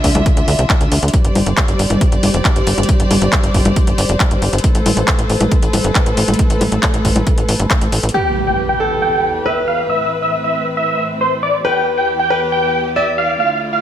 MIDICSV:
0, 0, Header, 1, 7, 480
1, 0, Start_track
1, 0, Key_signature, 0, "minor"
1, 0, Tempo, 437956
1, 1245, Time_signature, 4, 2, 24, 8
1, 15137, End_track
2, 0, Start_track
2, 0, Title_t, "Supersaw synth"
2, 0, Program_c, 0, 81
2, 8925, Note_on_c, 0, 79, 91
2, 9142, Note_off_c, 0, 79, 0
2, 9285, Note_on_c, 0, 79, 85
2, 9430, Note_off_c, 0, 79, 0
2, 9525, Note_on_c, 0, 79, 87
2, 9742, Note_off_c, 0, 79, 0
2, 9884, Note_on_c, 0, 79, 91
2, 10175, Note_off_c, 0, 79, 0
2, 10365, Note_on_c, 0, 76, 86
2, 10510, Note_off_c, 0, 76, 0
2, 10605, Note_on_c, 0, 77, 82
2, 10750, Note_off_c, 0, 77, 0
2, 10845, Note_on_c, 0, 76, 89
2, 11062, Note_off_c, 0, 76, 0
2, 11205, Note_on_c, 0, 76, 81
2, 11350, Note_off_c, 0, 76, 0
2, 11444, Note_on_c, 0, 76, 86
2, 11662, Note_off_c, 0, 76, 0
2, 11804, Note_on_c, 0, 76, 93
2, 12094, Note_off_c, 0, 76, 0
2, 12284, Note_on_c, 0, 72, 83
2, 12430, Note_off_c, 0, 72, 0
2, 12525, Note_on_c, 0, 74, 86
2, 12670, Note_off_c, 0, 74, 0
2, 12765, Note_on_c, 0, 79, 91
2, 12982, Note_off_c, 0, 79, 0
2, 13125, Note_on_c, 0, 79, 85
2, 13270, Note_off_c, 0, 79, 0
2, 13365, Note_on_c, 0, 79, 88
2, 13582, Note_off_c, 0, 79, 0
2, 13724, Note_on_c, 0, 79, 92
2, 14014, Note_off_c, 0, 79, 0
2, 14205, Note_on_c, 0, 76, 82
2, 14350, Note_off_c, 0, 76, 0
2, 14445, Note_on_c, 0, 77, 80
2, 14590, Note_off_c, 0, 77, 0
2, 14685, Note_on_c, 0, 77, 89
2, 14902, Note_off_c, 0, 77, 0
2, 15045, Note_on_c, 0, 77, 85
2, 15137, Note_off_c, 0, 77, 0
2, 15137, End_track
3, 0, Start_track
3, 0, Title_t, "Grand piano"
3, 0, Program_c, 1, 0
3, 8924, Note_on_c, 1, 67, 85
3, 9548, Note_off_c, 1, 67, 0
3, 9644, Note_on_c, 1, 69, 81
3, 10268, Note_off_c, 1, 69, 0
3, 10364, Note_on_c, 1, 71, 83
3, 12668, Note_off_c, 1, 71, 0
3, 12764, Note_on_c, 1, 71, 87
3, 13388, Note_off_c, 1, 71, 0
3, 13485, Note_on_c, 1, 71, 83
3, 14109, Note_off_c, 1, 71, 0
3, 14205, Note_on_c, 1, 74, 84
3, 15137, Note_off_c, 1, 74, 0
3, 15137, End_track
4, 0, Start_track
4, 0, Title_t, "String section"
4, 0, Program_c, 2, 48
4, 0, Note_on_c, 2, 50, 75
4, 0, Note_on_c, 2, 62, 70
4, 0, Note_on_c, 2, 65, 69
4, 0, Note_on_c, 2, 76, 85
4, 1225, Note_off_c, 2, 50, 0
4, 1225, Note_off_c, 2, 62, 0
4, 1225, Note_off_c, 2, 65, 0
4, 1225, Note_off_c, 2, 76, 0
4, 1244, Note_on_c, 2, 67, 70
4, 1244, Note_on_c, 2, 72, 70
4, 1245, Note_on_c, 2, 55, 74
4, 1245, Note_on_c, 2, 74, 84
4, 5046, Note_off_c, 2, 55, 0
4, 5046, Note_off_c, 2, 67, 0
4, 5046, Note_off_c, 2, 74, 0
4, 5085, Note_on_c, 2, 57, 77
4, 5085, Note_on_c, 2, 69, 73
4, 5085, Note_on_c, 2, 71, 69
4, 8881, Note_off_c, 2, 72, 0
4, 8886, Note_off_c, 2, 57, 0
4, 8886, Note_off_c, 2, 69, 0
4, 8887, Note_off_c, 2, 71, 0
4, 8925, Note_on_c, 2, 40, 72
4, 8925, Note_on_c, 2, 52, 65
4, 8925, Note_on_c, 2, 67, 64
4, 8925, Note_on_c, 2, 71, 76
4, 10826, Note_off_c, 2, 40, 0
4, 10826, Note_off_c, 2, 67, 0
4, 10845, Note_on_c, 2, 45, 70
4, 10845, Note_on_c, 2, 60, 65
4, 12726, Note_off_c, 2, 71, 0
4, 12746, Note_off_c, 2, 45, 0
4, 12746, Note_off_c, 2, 60, 0
4, 12765, Note_on_c, 2, 40, 71
4, 12765, Note_on_c, 2, 59, 65
4, 12765, Note_on_c, 2, 67, 79
4, 14641, Note_off_c, 2, 52, 0
4, 14666, Note_off_c, 2, 40, 0
4, 14666, Note_off_c, 2, 59, 0
4, 14666, Note_off_c, 2, 67, 0
4, 14684, Note_on_c, 2, 38, 70
4, 14685, Note_on_c, 2, 50, 65
4, 14685, Note_on_c, 2, 64, 68
4, 14685, Note_on_c, 2, 65, 77
4, 15137, Note_off_c, 2, 38, 0
4, 15137, Note_off_c, 2, 50, 0
4, 15137, Note_off_c, 2, 64, 0
4, 15137, Note_off_c, 2, 65, 0
4, 15137, End_track
5, 0, Start_track
5, 0, Title_t, "Analog synth bass"
5, 0, Program_c, 3, 38
5, 44, Note_on_c, 3, 38, 99
5, 122, Note_off_c, 3, 38, 0
5, 165, Note_on_c, 3, 38, 91
5, 242, Note_off_c, 3, 38, 0
5, 405, Note_on_c, 3, 38, 86
5, 482, Note_off_c, 3, 38, 0
5, 525, Note_on_c, 3, 38, 101
5, 602, Note_off_c, 3, 38, 0
5, 645, Note_on_c, 3, 36, 93
5, 722, Note_off_c, 3, 36, 0
5, 885, Note_on_c, 3, 38, 83
5, 962, Note_off_c, 3, 38, 0
5, 1005, Note_on_c, 3, 38, 96
5, 1082, Note_off_c, 3, 38, 0
5, 1125, Note_on_c, 3, 38, 89
5, 1202, Note_off_c, 3, 38, 0
5, 1365, Note_on_c, 3, 31, 84
5, 1442, Note_off_c, 3, 31, 0
5, 1485, Note_on_c, 3, 31, 99
5, 1562, Note_off_c, 3, 31, 0
5, 1605, Note_on_c, 3, 31, 94
5, 1682, Note_off_c, 3, 31, 0
5, 1845, Note_on_c, 3, 31, 82
5, 1922, Note_off_c, 3, 31, 0
5, 1965, Note_on_c, 3, 31, 97
5, 2042, Note_off_c, 3, 31, 0
5, 2085, Note_on_c, 3, 31, 90
5, 2162, Note_off_c, 3, 31, 0
5, 2325, Note_on_c, 3, 31, 85
5, 2402, Note_off_c, 3, 31, 0
5, 2445, Note_on_c, 3, 31, 94
5, 2522, Note_off_c, 3, 31, 0
5, 2565, Note_on_c, 3, 29, 94
5, 2642, Note_off_c, 3, 29, 0
5, 2805, Note_on_c, 3, 31, 81
5, 2882, Note_off_c, 3, 31, 0
5, 2925, Note_on_c, 3, 31, 95
5, 3002, Note_off_c, 3, 31, 0
5, 3045, Note_on_c, 3, 31, 87
5, 3122, Note_off_c, 3, 31, 0
5, 3285, Note_on_c, 3, 31, 89
5, 3362, Note_off_c, 3, 31, 0
5, 3405, Note_on_c, 3, 31, 99
5, 3482, Note_off_c, 3, 31, 0
5, 3525, Note_on_c, 3, 31, 91
5, 3602, Note_off_c, 3, 31, 0
5, 3765, Note_on_c, 3, 31, 87
5, 3842, Note_off_c, 3, 31, 0
5, 3885, Note_on_c, 3, 31, 96
5, 3962, Note_off_c, 3, 31, 0
5, 4005, Note_on_c, 3, 31, 91
5, 4082, Note_off_c, 3, 31, 0
5, 4244, Note_on_c, 3, 31, 86
5, 4322, Note_off_c, 3, 31, 0
5, 4364, Note_on_c, 3, 31, 102
5, 4442, Note_off_c, 3, 31, 0
5, 4485, Note_on_c, 3, 29, 94
5, 4562, Note_off_c, 3, 29, 0
5, 4724, Note_on_c, 3, 31, 84
5, 4802, Note_off_c, 3, 31, 0
5, 4845, Note_on_c, 3, 31, 97
5, 4922, Note_off_c, 3, 31, 0
5, 4965, Note_on_c, 3, 31, 88
5, 5042, Note_off_c, 3, 31, 0
5, 5205, Note_on_c, 3, 33, 87
5, 5282, Note_off_c, 3, 33, 0
5, 5325, Note_on_c, 3, 33, 98
5, 5402, Note_off_c, 3, 33, 0
5, 5445, Note_on_c, 3, 33, 93
5, 5522, Note_off_c, 3, 33, 0
5, 5685, Note_on_c, 3, 33, 85
5, 5762, Note_off_c, 3, 33, 0
5, 5805, Note_on_c, 3, 33, 95
5, 5882, Note_off_c, 3, 33, 0
5, 5925, Note_on_c, 3, 33, 91
5, 6002, Note_off_c, 3, 33, 0
5, 6165, Note_on_c, 3, 33, 88
5, 6242, Note_off_c, 3, 33, 0
5, 6285, Note_on_c, 3, 33, 99
5, 6362, Note_off_c, 3, 33, 0
5, 6405, Note_on_c, 3, 31, 94
5, 6482, Note_off_c, 3, 31, 0
5, 6645, Note_on_c, 3, 33, 84
5, 6722, Note_off_c, 3, 33, 0
5, 6766, Note_on_c, 3, 33, 98
5, 6843, Note_off_c, 3, 33, 0
5, 6885, Note_on_c, 3, 33, 88
5, 6962, Note_off_c, 3, 33, 0
5, 7125, Note_on_c, 3, 33, 88
5, 7202, Note_off_c, 3, 33, 0
5, 7245, Note_on_c, 3, 33, 100
5, 7322, Note_off_c, 3, 33, 0
5, 7364, Note_on_c, 3, 33, 91
5, 7442, Note_off_c, 3, 33, 0
5, 7605, Note_on_c, 3, 33, 84
5, 7682, Note_off_c, 3, 33, 0
5, 7725, Note_on_c, 3, 33, 97
5, 7802, Note_off_c, 3, 33, 0
5, 7845, Note_on_c, 3, 33, 87
5, 7922, Note_off_c, 3, 33, 0
5, 8085, Note_on_c, 3, 33, 86
5, 8162, Note_off_c, 3, 33, 0
5, 8205, Note_on_c, 3, 33, 100
5, 8282, Note_off_c, 3, 33, 0
5, 8325, Note_on_c, 3, 31, 92
5, 8402, Note_off_c, 3, 31, 0
5, 8565, Note_on_c, 3, 33, 82
5, 8643, Note_off_c, 3, 33, 0
5, 8685, Note_on_c, 3, 33, 96
5, 8762, Note_off_c, 3, 33, 0
5, 8805, Note_on_c, 3, 33, 93
5, 8882, Note_off_c, 3, 33, 0
5, 15137, End_track
6, 0, Start_track
6, 0, Title_t, "Impact"
6, 0, Program_c, 4, 103
6, 8925, Note_on_c, 4, 60, 65
6, 10845, Note_off_c, 4, 60, 0
6, 15137, End_track
7, 0, Start_track
7, 0, Title_t, "Drums"
7, 44, Note_on_c, 9, 36, 61
7, 44, Note_on_c, 9, 46, 90
7, 154, Note_off_c, 9, 36, 0
7, 154, Note_off_c, 9, 46, 0
7, 164, Note_on_c, 9, 42, 49
7, 164, Note_on_c, 9, 63, 77
7, 274, Note_off_c, 9, 42, 0
7, 274, Note_off_c, 9, 63, 0
7, 284, Note_on_c, 9, 42, 73
7, 285, Note_on_c, 9, 36, 126
7, 394, Note_off_c, 9, 36, 0
7, 394, Note_off_c, 9, 42, 0
7, 404, Note_on_c, 9, 42, 48
7, 514, Note_off_c, 9, 42, 0
7, 524, Note_on_c, 9, 46, 104
7, 634, Note_off_c, 9, 46, 0
7, 644, Note_on_c, 9, 42, 50
7, 754, Note_off_c, 9, 42, 0
7, 764, Note_on_c, 9, 39, 112
7, 764, Note_on_c, 9, 42, 72
7, 765, Note_on_c, 9, 36, 120
7, 874, Note_off_c, 9, 36, 0
7, 874, Note_off_c, 9, 39, 0
7, 874, Note_off_c, 9, 42, 0
7, 884, Note_on_c, 9, 42, 47
7, 994, Note_off_c, 9, 42, 0
7, 1004, Note_on_c, 9, 46, 93
7, 1114, Note_off_c, 9, 46, 0
7, 1124, Note_on_c, 9, 42, 45
7, 1184, Note_off_c, 9, 42, 0
7, 1184, Note_on_c, 9, 42, 58
7, 1244, Note_off_c, 9, 42, 0
7, 1244, Note_on_c, 9, 42, 73
7, 1245, Note_on_c, 9, 36, 121
7, 1354, Note_off_c, 9, 36, 0
7, 1354, Note_off_c, 9, 42, 0
7, 1364, Note_on_c, 9, 42, 48
7, 1474, Note_off_c, 9, 42, 0
7, 1484, Note_on_c, 9, 46, 99
7, 1484, Note_on_c, 9, 63, 77
7, 1594, Note_off_c, 9, 46, 0
7, 1594, Note_off_c, 9, 63, 0
7, 1605, Note_on_c, 9, 42, 48
7, 1714, Note_off_c, 9, 42, 0
7, 1724, Note_on_c, 9, 39, 112
7, 1724, Note_on_c, 9, 42, 72
7, 1725, Note_on_c, 9, 36, 113
7, 1834, Note_off_c, 9, 36, 0
7, 1834, Note_off_c, 9, 39, 0
7, 1834, Note_off_c, 9, 42, 0
7, 1844, Note_on_c, 9, 42, 48
7, 1954, Note_off_c, 9, 42, 0
7, 1965, Note_on_c, 9, 46, 86
7, 2074, Note_off_c, 9, 46, 0
7, 2084, Note_on_c, 9, 42, 48
7, 2084, Note_on_c, 9, 63, 79
7, 2194, Note_off_c, 9, 42, 0
7, 2194, Note_off_c, 9, 63, 0
7, 2204, Note_on_c, 9, 42, 73
7, 2205, Note_on_c, 9, 36, 115
7, 2314, Note_off_c, 9, 36, 0
7, 2314, Note_off_c, 9, 42, 0
7, 2325, Note_on_c, 9, 42, 48
7, 2434, Note_off_c, 9, 42, 0
7, 2445, Note_on_c, 9, 46, 102
7, 2445, Note_on_c, 9, 63, 80
7, 2554, Note_off_c, 9, 46, 0
7, 2554, Note_off_c, 9, 63, 0
7, 2565, Note_on_c, 9, 42, 48
7, 2674, Note_off_c, 9, 42, 0
7, 2685, Note_on_c, 9, 36, 115
7, 2685, Note_on_c, 9, 39, 104
7, 2685, Note_on_c, 9, 42, 73
7, 2794, Note_off_c, 9, 36, 0
7, 2794, Note_off_c, 9, 39, 0
7, 2794, Note_off_c, 9, 42, 0
7, 2805, Note_on_c, 9, 42, 47
7, 2914, Note_off_c, 9, 42, 0
7, 2924, Note_on_c, 9, 46, 94
7, 3034, Note_off_c, 9, 46, 0
7, 3045, Note_on_c, 9, 42, 48
7, 3045, Note_on_c, 9, 63, 64
7, 3105, Note_off_c, 9, 42, 0
7, 3105, Note_on_c, 9, 42, 62
7, 3155, Note_off_c, 9, 63, 0
7, 3165, Note_off_c, 9, 42, 0
7, 3165, Note_on_c, 9, 36, 115
7, 3165, Note_on_c, 9, 42, 78
7, 3274, Note_off_c, 9, 36, 0
7, 3275, Note_off_c, 9, 42, 0
7, 3285, Note_on_c, 9, 42, 52
7, 3394, Note_off_c, 9, 42, 0
7, 3405, Note_on_c, 9, 46, 95
7, 3405, Note_on_c, 9, 63, 77
7, 3514, Note_off_c, 9, 46, 0
7, 3514, Note_off_c, 9, 63, 0
7, 3525, Note_on_c, 9, 42, 50
7, 3634, Note_off_c, 9, 42, 0
7, 3645, Note_on_c, 9, 36, 107
7, 3645, Note_on_c, 9, 39, 109
7, 3645, Note_on_c, 9, 42, 77
7, 3754, Note_off_c, 9, 36, 0
7, 3754, Note_off_c, 9, 39, 0
7, 3754, Note_off_c, 9, 42, 0
7, 3765, Note_on_c, 9, 42, 49
7, 3874, Note_off_c, 9, 42, 0
7, 3884, Note_on_c, 9, 46, 85
7, 3885, Note_on_c, 9, 36, 58
7, 3994, Note_off_c, 9, 46, 0
7, 3995, Note_off_c, 9, 36, 0
7, 4004, Note_on_c, 9, 42, 50
7, 4004, Note_on_c, 9, 63, 78
7, 4114, Note_off_c, 9, 42, 0
7, 4114, Note_off_c, 9, 63, 0
7, 4124, Note_on_c, 9, 42, 75
7, 4125, Note_on_c, 9, 36, 115
7, 4234, Note_off_c, 9, 42, 0
7, 4235, Note_off_c, 9, 36, 0
7, 4244, Note_on_c, 9, 42, 53
7, 4354, Note_off_c, 9, 42, 0
7, 4364, Note_on_c, 9, 46, 100
7, 4474, Note_off_c, 9, 46, 0
7, 4484, Note_on_c, 9, 42, 51
7, 4594, Note_off_c, 9, 42, 0
7, 4604, Note_on_c, 9, 39, 111
7, 4604, Note_on_c, 9, 42, 75
7, 4605, Note_on_c, 9, 36, 112
7, 4714, Note_off_c, 9, 36, 0
7, 4714, Note_off_c, 9, 39, 0
7, 4714, Note_off_c, 9, 42, 0
7, 4724, Note_on_c, 9, 42, 51
7, 4834, Note_off_c, 9, 42, 0
7, 4844, Note_on_c, 9, 46, 90
7, 4954, Note_off_c, 9, 46, 0
7, 4964, Note_on_c, 9, 42, 47
7, 5024, Note_off_c, 9, 42, 0
7, 5024, Note_on_c, 9, 42, 63
7, 5084, Note_off_c, 9, 42, 0
7, 5084, Note_on_c, 9, 42, 83
7, 5085, Note_on_c, 9, 36, 112
7, 5194, Note_off_c, 9, 36, 0
7, 5194, Note_off_c, 9, 42, 0
7, 5204, Note_on_c, 9, 42, 55
7, 5314, Note_off_c, 9, 42, 0
7, 5324, Note_on_c, 9, 46, 97
7, 5324, Note_on_c, 9, 63, 73
7, 5434, Note_off_c, 9, 46, 0
7, 5434, Note_off_c, 9, 63, 0
7, 5445, Note_on_c, 9, 42, 53
7, 5554, Note_off_c, 9, 42, 0
7, 5564, Note_on_c, 9, 39, 117
7, 5564, Note_on_c, 9, 42, 82
7, 5565, Note_on_c, 9, 36, 108
7, 5674, Note_off_c, 9, 36, 0
7, 5674, Note_off_c, 9, 39, 0
7, 5674, Note_off_c, 9, 42, 0
7, 5684, Note_on_c, 9, 42, 53
7, 5793, Note_off_c, 9, 42, 0
7, 5804, Note_on_c, 9, 46, 85
7, 5914, Note_off_c, 9, 46, 0
7, 5924, Note_on_c, 9, 42, 54
7, 5924, Note_on_c, 9, 63, 76
7, 6034, Note_off_c, 9, 42, 0
7, 6034, Note_off_c, 9, 63, 0
7, 6044, Note_on_c, 9, 42, 83
7, 6045, Note_on_c, 9, 36, 114
7, 6154, Note_off_c, 9, 36, 0
7, 6154, Note_off_c, 9, 42, 0
7, 6164, Note_on_c, 9, 42, 53
7, 6274, Note_off_c, 9, 42, 0
7, 6284, Note_on_c, 9, 46, 97
7, 6284, Note_on_c, 9, 63, 74
7, 6394, Note_off_c, 9, 46, 0
7, 6394, Note_off_c, 9, 63, 0
7, 6404, Note_on_c, 9, 42, 53
7, 6514, Note_off_c, 9, 42, 0
7, 6524, Note_on_c, 9, 39, 115
7, 6524, Note_on_c, 9, 42, 77
7, 6525, Note_on_c, 9, 36, 111
7, 6634, Note_off_c, 9, 36, 0
7, 6634, Note_off_c, 9, 39, 0
7, 6634, Note_off_c, 9, 42, 0
7, 6644, Note_on_c, 9, 42, 55
7, 6754, Note_off_c, 9, 42, 0
7, 6764, Note_on_c, 9, 46, 90
7, 6873, Note_off_c, 9, 46, 0
7, 6884, Note_on_c, 9, 42, 50
7, 6884, Note_on_c, 9, 63, 59
7, 6944, Note_off_c, 9, 42, 0
7, 6944, Note_on_c, 9, 42, 65
7, 6993, Note_off_c, 9, 63, 0
7, 7004, Note_off_c, 9, 42, 0
7, 7004, Note_on_c, 9, 42, 85
7, 7005, Note_on_c, 9, 36, 115
7, 7113, Note_off_c, 9, 42, 0
7, 7114, Note_off_c, 9, 36, 0
7, 7124, Note_on_c, 9, 42, 56
7, 7233, Note_off_c, 9, 42, 0
7, 7244, Note_on_c, 9, 46, 101
7, 7244, Note_on_c, 9, 63, 74
7, 7353, Note_off_c, 9, 46, 0
7, 7353, Note_off_c, 9, 63, 0
7, 7364, Note_on_c, 9, 42, 52
7, 7474, Note_off_c, 9, 42, 0
7, 7484, Note_on_c, 9, 39, 120
7, 7484, Note_on_c, 9, 42, 85
7, 7485, Note_on_c, 9, 36, 112
7, 7594, Note_off_c, 9, 36, 0
7, 7594, Note_off_c, 9, 39, 0
7, 7594, Note_off_c, 9, 42, 0
7, 7604, Note_on_c, 9, 42, 54
7, 7714, Note_off_c, 9, 42, 0
7, 7724, Note_on_c, 9, 46, 86
7, 7725, Note_on_c, 9, 36, 57
7, 7834, Note_off_c, 9, 36, 0
7, 7834, Note_off_c, 9, 46, 0
7, 7845, Note_on_c, 9, 42, 54
7, 7845, Note_on_c, 9, 63, 75
7, 7954, Note_off_c, 9, 42, 0
7, 7954, Note_off_c, 9, 63, 0
7, 7964, Note_on_c, 9, 42, 80
7, 7965, Note_on_c, 9, 36, 122
7, 8074, Note_off_c, 9, 36, 0
7, 8074, Note_off_c, 9, 42, 0
7, 8084, Note_on_c, 9, 42, 54
7, 8194, Note_off_c, 9, 42, 0
7, 8204, Note_on_c, 9, 46, 101
7, 8314, Note_off_c, 9, 46, 0
7, 8324, Note_on_c, 9, 42, 54
7, 8434, Note_off_c, 9, 42, 0
7, 8445, Note_on_c, 9, 36, 112
7, 8445, Note_on_c, 9, 39, 112
7, 8445, Note_on_c, 9, 42, 78
7, 8554, Note_off_c, 9, 36, 0
7, 8554, Note_off_c, 9, 39, 0
7, 8554, Note_off_c, 9, 42, 0
7, 8564, Note_on_c, 9, 42, 54
7, 8674, Note_off_c, 9, 42, 0
7, 8684, Note_on_c, 9, 46, 92
7, 8794, Note_off_c, 9, 46, 0
7, 8805, Note_on_c, 9, 42, 50
7, 8864, Note_off_c, 9, 42, 0
7, 8864, Note_on_c, 9, 42, 70
7, 8974, Note_off_c, 9, 42, 0
7, 15137, End_track
0, 0, End_of_file